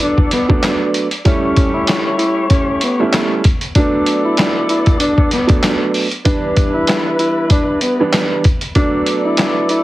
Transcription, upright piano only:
0.00 0.34 F#3 loud
0.00 0.34 A3 medium
0.00 0.34 B3 medium
0.00 0.34 D4 loud
0.48 1.06 F#3 medium
0.48 1.06 A3 medium
0.48 1.06 B3 loud
0.48 1.06 D4 loud
1.25 2.83 G3 loud
1.25 2.84 A3 medium
1.25 2.84 C#4 medium
1.25 2.84 E4 loud
2.99 3.41 G3 loud
2.99 3.41 A3 medium
2.99 3.42 C#4 medium
2.99 3.42 E4 loud
3.77 5.35 F#3 medium
3.77 5.35 A3 medium
3.77 5.35 B3 medium
3.77 5.35 D4 loud
5.47 6.05 F#3 loud
5.47 6.05 A3 medium
5.47 6.05 B3 medium
5.47 6.05 D4 loud
6.25 7.83 E3 medium
6.25 7.84 G3 medium
6.25 7.84 B3 medium
6.25 7.84 D4 loud
8.00 8.41 E3 medium
8.00 8.42 G3 medium
8.00 8.42 B3 medium
8.00 8.42 D4 loud
8.76 9.84 F#3 loud
8.76 9.84 A3 medium
8.76 9.84 B3 medium
8.76 9.84 D4 loud

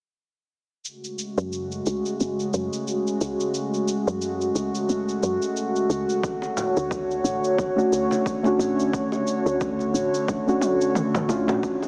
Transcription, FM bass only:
1.38 1.82 F#2 medium
1.87 2.02 C#2 medium
2.21 2.48 F#1 medium
2.54 2.69 F#2 medium
3.21 3.37 C#2 medium
4.07 4.51 F#2 medium
4.55 4.71 C#2 medium
4.89 5.18 F#1 medium
5.23 5.39 F#2 medium
5.90 6.06 C#2 medium
6.77 7.21 D2 medium
7.24 7.40 A1 medium
7.59 7.87 D1 medium
7.92 8.08 D2 medium
8.59 8.75 A1 medium
9.46 9.90 D2 medium
9.94 10.10 A1 medium
10.29 10.57 D1 medium
11.30 11.46 A1 medium
11.49 11.61 A1 medium

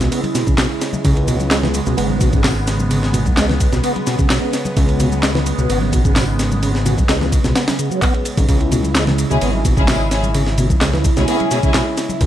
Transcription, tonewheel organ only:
0.01 0.10 B2 medium
0.11 0.21 B3 medium
0.35 0.44 B2 loud
0.47 0.55 C#3 medium
0.58 0.67 B2 medium
1.05 1.14 C#3 medium
1.28 1.37 B2 loud
1.51 1.60 G#3 loud
1.63 1.68 E3 medium
1.87 1.96 B2 medium
1.97 2.07 B3 medium
2.21 2.30 B2 loud
2.33 2.41 C#3 medium
2.44 2.53 B2 medium
2.90 3.00 C#3 medium
3.14 3.23 B2 loud
3.37 3.46 G#3 loud
3.49 3.54 E3 medium
3.72 3.82 B2 medium
3.83 3.93 B3 medium
4.07 4.16 B2 loud
4.19 4.27 C#3 medium
4.30 4.39 B2 medium
4.76 4.86 C#3 medium
5.00 5.09 B2 loud
5.23 5.32 G#3 loud
5.35 5.40 E3 medium
5.58 5.68 B2 medium
5.69 5.79 B3 medium
5.93 6.02 B2 loud
6.05 6.13 C#3 medium
6.16 6.25 B2 medium
6.62 6.72 C#3 medium
6.85 6.95 B2 loud
7.09 7.18 G#3 loud
7.21 7.26 E3 medium
7.44 7.54 B2 medium
7.55 7.65 B3 medium
7.79 7.90 C#3 medium
7.91 8.01 F#3 medium
8.02 8.14 B3 medium
8.38 8.46 C#3 medium
8.49 8.58 C#3 medium
8.72 8.81 B2 loud
8.95 9.05 G#3 loud
9.07 9.12 E3 medium
9.30 9.41 B2 medium
9.42 9.51 B3 medium
9.65 9.74 B2 loud
9.77 9.86 C#3 medium
9.88 9.98 B2 medium
10.35 10.44 C#3 medium
10.58 10.67 B2 loud
10.81 10.91 G#3 loud
10.94 10.99 E3 medium
11.17 11.27 B2 medium
11.28 11.37 B3 medium
11.51 11.60 B2 loud
11.63 11.72 C#3 medium
11.74 11.84 B2 medium
12.21 12.26 C#3 medium

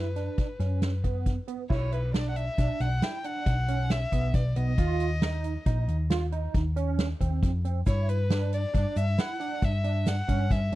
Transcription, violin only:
0.00 1.27 B4 medium
1.70 1.94 C#5 medium
1.92 2.14 B4 medium
2.14 2.28 D5 medium
2.29 2.38 F#5 medium
2.36 2.82 E5 medium
2.80 3.04 F#5 medium
3.03 3.26 G5 medium
3.25 3.92 F#5 loud
3.91 4.36 E5 medium
4.34 4.58 D5 medium
4.56 5.88 D#5 medium
7.87 8.10 C#5 medium
8.09 8.53 B4 medium
8.53 8.98 D5 medium
8.97 9.21 E5 medium
9.19 9.66 F#5 medium
9.64 10.09 E5 medium
10.08 10.53 F#5 medium
10.51 10.75 E5 medium

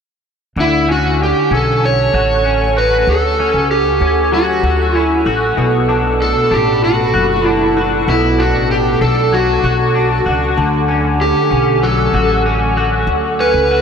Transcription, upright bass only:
0.56 1.31 D2 medium
1.51 2.11 B1 medium
2.14 3.04 A1 medium
3.07 3.52 D2 medium
3.54 3.99 C#2 medium
4.01 4.60 D2 medium
4.64 5.23 D2 loud
5.26 5.56 A1 medium
5.57 6.32 B1 medium
6.51 7.11 A1 medium
7.14 8.04 F#1 medium
8.08 8.55 B1 medium
8.55 8.99 A1 medium
9.01 9.61 B1 medium
9.64 10.23 B1 medium
10.26 10.56 C#2 medium
10.57 11.32 D2 medium
11.51 12.11 B1 medium
12.14 13.04 A1 medium
13.07 13.52 D2 medium
13.54 13.82 C#2 medium

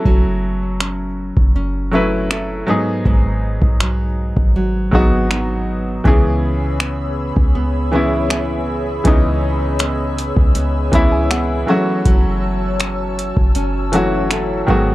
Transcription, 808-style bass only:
0.06 1.33 F#1 loud
1.37 2.64 F#1 loud
3.06 3.60 G#1 loud
3.62 4.34 B1 loud
4.37 4.91 G#1 loud
4.93 6.01 G#1 loud
6.05 7.33 C#2 loud
7.37 9.01 C#2 loud
9.05 10.33 C#2 loud
10.37 10.91 C#2 loud
10.93 11.65 C#2 loud
12.06 13.33 F#1 loud
13.37 14.64 F#1 loud
14.68 14.95 G#1 medium

